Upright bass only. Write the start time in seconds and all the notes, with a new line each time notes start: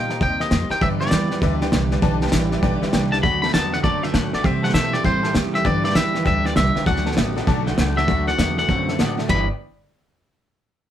Already playing: A#2
0.21 D#2
0.51 F2
0.70 muted upright bass stroke
0.82 G2
1.11 E2
1.42 D2
1.72 C2
2.03 B1
2.32 A1
2.63 B1
2.82 muted upright bass stroke
2.93 C2
3.23 D2
3.54 E2
3.84 F#2
4.14 A2
4.34 muted upright bass stroke
4.44 C3
4.74 B2
5.05 A2
5.35 E2
5.65 G2
5.95 E2
6.26 D2
6.56 C2
6.76 muted upright bass stroke
6.86 D2
7.17 A1
7.47 B1
7.78 C#2
8.08 D2
8.38 E2
8.69 F#2
8.99 A2
9.30 G1